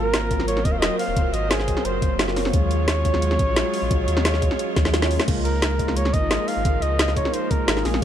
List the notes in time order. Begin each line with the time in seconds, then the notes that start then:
Already playing: G#1 F#3 A#3 C4 F4 A#4 C5
0.14 snare, closed hi-hat
0.30 F#3 A#3 C4 F4, kick, closed hi-hat
0.40 snare
0.48 C#5, closed hi-hat
0.57 snare
0.65 D#1 D#5, kick, closed hi-hat
0.72 F5
0.79 F#3 A#3 C4 F4 D#5, snare, closed hi-hat
0.90 F#3 A#3 C4 F#4
0.99 F5, open hi-hat
1.08 D#1
1.15 F#3 A#3 C4 F4, kick, closed hi-hat
1.34 G#1 D#5, closed hi-hat
1.51 G#4, snare, closed hi-hat
1.60 snare
1.67 F#3 A#3 C4 F4, kick, closed hi-hat
1.77 snare
1.85 F#1 C5, closed hi-hat
2.02 kick, closed hi-hat
2.18 F#3 A#3 C4 F4, snare, closed hi-hat
2.27 F#3 A#3 C4 F#4, snare
2.36 C#5, snare, open hi-hat
2.45 snare
2.52 D#2 F#3 G#3 C#4 F4 G#4 C#5, kick, closed hi-hat
2.71 closed hi-hat
2.88 snare, closed hi-hat
3.04 F#3 G#3 C#4 F4, kick, closed hi-hat
3.14 snare
3.22 closed hi-hat
3.31 snare
3.39 A#1, kick, closed hi-hat
3.56 F#3 G#3 C#4 F4, snare, closed hi-hat
3.65 F#3 G#3 C#4 F#4
3.74 open hi-hat
3.82 A#1
3.89 F#3 G#3 C#4 F4, kick, closed hi-hat
4.08 D#2, closed hi-hat
4.17 snare
4.25 snare, closed hi-hat
4.34 snare
4.41 F#3 G#3 C#4 F4, kick, closed hi-hat
4.51 snare
4.59 closed hi-hat
4.76 D#2, kick, snare, closed hi-hat
4.85 snare
4.93 F#3 G#3 C#4 F4, snare, closed hi-hat
5.01 F#3 G#3 C#4 F#4, snare
5.11 open hi-hat
5.20 snare
5.26 C#2 F3 G#3 A#3 D#4 F4 A#4, kick, closed hi-hat, crash
5.45 A#4, closed hi-hat
5.62 snare, closed hi-hat
5.79 G#3 A#3 D#4 F4, kick, closed hi-hat
5.88 snare
5.97 C#5, closed hi-hat
6.05 snare
6.14 G#1 D#5, kick, closed hi-hat
6.30 G#3 A#3 D#4 F4, snare, closed hi-hat
6.39 G#3 A#3 D#4 G#4
6.48 F5, open hi-hat
6.57 G#1
6.64 G#3 A#3 D#4 F4, kick, closed hi-hat
6.82 C#2 D#5, closed hi-hat
6.99 snare, closed hi-hat
7.08 snare
7.16 G#3 A#3 D#4 F4 C#5, kick, closed hi-hat
7.25 snare
7.33 C5, closed hi-hat
7.51 A#4, kick, closed hi-hat
7.67 G#1 G#3 A#3 D#4 F4, snare, closed hi-hat
7.76 G#3 A#3 D#4 G#4, snare
7.85 A#1 G#4, snare, open hi-hat
7.94 snare
8.01 G#3